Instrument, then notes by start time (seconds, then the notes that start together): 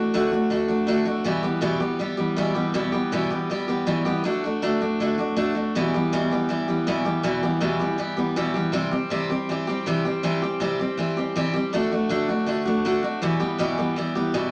steel-string acoustic guitar
Already playing: A3 D4 F#4
0.14 D3 A3 D4 F#4
0.32 A3 D4 F#4
0.50 D3 A3 D4 F#4
0.68 A3 D4 F#4
0.87 D3 A3 D4 F#4
1.05 A3 D4 F#4
1.24 E2 B2 E3 G3 B3 G4
1.43 E3 G3 B3 G4
1.61 E2 B2 E3 G3 B3 G4
1.80 E3 G3 B3 G4
1.99 E3 G3 B3 G4
2.17 E3 G3 B3 G4
2.36 E2 B2 E3 G3 B3 G4
2.54 E3 G3 B3 G4
2.74 E2 B2 E3 G3 B3 G4
2.92 E3 G3 B3 G4
3.12 E2 B2 E3 G3 B3 G4
3.30 E3 G3 B3 G4
3.50 E3 G3 B3 G4
3.68 E3 G3 B3 G4
3.86 E2 B2 E3 G3 B3 G4
4.05 E3 G3 B3 G4
4.24 D3 A3 D4 F#4
4.44 A3 D4 F#4
4.62 D3 A3 D4 F#4
4.81 A3 D4 F#4
5.00 D3 A3 D4 F#4
5.18 A3 D4 F#4
5.36 D3 A3 D4 F#4
5.55 A3 D4 F#4
5.75 E2 B2 E3 G3 B3 G4
5.94 E3 G3 B3 G4
6.12 E2 B2 E3 G3 B3 G4
6.31 E3 G3 B3 G4
6.49 E3 G3 B3 G4
6.68 E3 G3 B3 G4
6.87 E2 B2 E3 G3 B3 G4
7.05 E3 G3 B3 G4
7.23 E2 B2 E3 G3 B3 G4
7.43 E3 G3 B3 G4
7.61 E2 B2 E3 G3 B3 G4
7.79 E3 G3 B3 G4
7.98 E3 G3 B3 G4
8.17 E3 G3 B3 G4
8.36 E2 B2 E3 G3 B3 G4
8.54 E3 G3 B3 G4
8.72 C3 E3 G3 C4 G4
8.91 G3 C4 G4
9.10 C3 E3 G3 C4 G4
9.30 G3 C4 G4
9.49 E3 G3 C4 G4
9.67 G3 C4 G4
9.86 C3 E3 G3 C4 G4
10.05 G3 C4 G4
10.23 C3 E3 G3 C4 G4
10.42 G3 C4 G4
10.60 C3 E3 G3 C4 G4
10.79 G3 C4 G4
10.97 E3 G3 C4 G4
11.17 G3 C4 G4
11.36 C3 E3 G3 C4 G4
11.54 G3 C4 G4
11.73 D3 A3 D4 F#4
11.91 A3 D4 F#4
12.09 D3 A3 D4 F#4
12.28 A3 D4 F#4
12.46 D3 A3 D4 F#4
12.65 A3 D4 F#4
12.85 D3 A3 D4 F#4
13.03 A3 D4 F#4
13.22 E2 B2 E3 G3 B3 G4
13.40 E3 G3 B3 G4
13.59 E2 B2 E3 G3 B3 G4
13.78 E3 G3 B3 G4
13.96 E3 G3 B3 G4
14.15 E3 G3 B3 G4
14.34 E2 B2 E3 G3 B3 G4